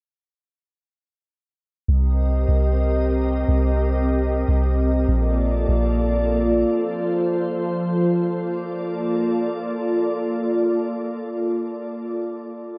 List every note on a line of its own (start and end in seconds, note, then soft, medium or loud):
1.88 2.46 C2 loud
1.88 5.05 C4 medium
1.88 5.05 G4 medium
1.88 5.05 A#4 medium
1.88 5.05 D#5 medium
2.48 3.44 C2 loud
3.48 4.44 C2 loud
4.48 5.06 C2 loud
5.08 5.66 A#1 loud
5.08 6.67 A#3 medium
5.08 8.25 F4 medium
5.08 8.25 A4 medium
5.08 6.67 D5 medium
5.68 6.64 A#1 loud
6.68 8.27 F3 medium
6.68 8.27 C5 medium
8.28 12.24 A#3 medium
8.28 12.24 F4 medium
8.28 12.24 A4 medium
8.28 12.24 D5 medium